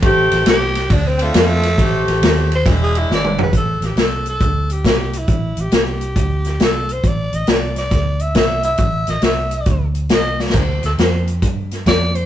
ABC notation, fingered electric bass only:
X:1
M:4/4
L:1/8
Q:"Swing" 1/4=137
K:Am
V:1 name="Fingered electric bass" clef=bass
A,,, A,,, C,,2 D,,2 F,,2 | A,,, A,,, ^D,,2 E,,,2 ^G,,,2 | A,,, A,,, C,,2 D,,2 C,,2 | A,,, A,,, C,,2 D,,2 C,,2 |
A,,, A,,, C,,2 D,,2 C,,2 | A,,, A,,, C,,2 D,,2 C,,2 | D,, D,, F,,2 G,,2 F,,2 |]